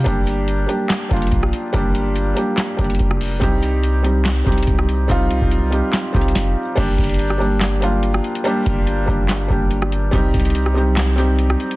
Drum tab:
CC |------------------------------------------------------------------------------------------------|------------------------------------------------------------------------------------------------|------------------------------------------------------------------------------------------------|------------------------------------------------------------------------------------------------|
HH |x-----------x-----------x-----------x-----------x-----------x--x--x--x--x-----------x-----------|x-----------x-----------x-----------x-----------x-----------x--x--x--x--x-----------o-----------|x-----------x-----------x-----------x-----------x-----------x--x--x--x--x-----------x-----------|x-----------x-----------x-----------x-----------x-----------x---x---x---------------------------|
CP |------------------------------------------------x-----------------------------------------------|------------------------------------------------x-----------------------------------------------|------------------------------------------------x-----------------------------------------------|------------------------------------------------x-----------------------------------------------|
SD |------------------------------------------------o-----------------------------r-----------------|------------------------------------------------o-----------------------------r-----------------|------------------------------------------------o-----------------------------r-----------------|------------------------------------------------o-----------------------o-----------------------|
BD |o-----------------------------------------------------------o-----------o-----------------------|o-----------------------------------------------------------o-----------o-----------------------|o-----------------------------------------------------------o-----------o-----------------------|o-----------------o-----------------------------------------o-----------o-----------------------|

CC |x-----------------------------------------------------------------------------------------------|------------------------------------------------------------------------------------------------|------------------------------------------------------------------------------------------------|
HH |x-----------x--x--x--x--x-----------------------x-----------x-----------x-----------x-----x-----|x-----------x-----------x-----------------------x-----------------------x-----------x-----------|x-----------x--x--x--x--x-----------------------x-----------x-----------x-----------x-----x-----|
CP |------------------------------------------------x-----------------------------------------------|------------------------------------------------x-----------------------------------------------|------------------------------------------------x-----------------------------------------------|
SD |------------------------------r-----------------o-----------------------------r-----------------|------------------------------------------------o-----------------------------r-----------------|------------------------------r-----------------o-----------------------------r-----------------|
BD |o-----------o-----------------------------------------------------------------------------------|------------o-----------------------o-----------------------o-----------------------------------|o-----------o-----------------------------------------------------------------------------------|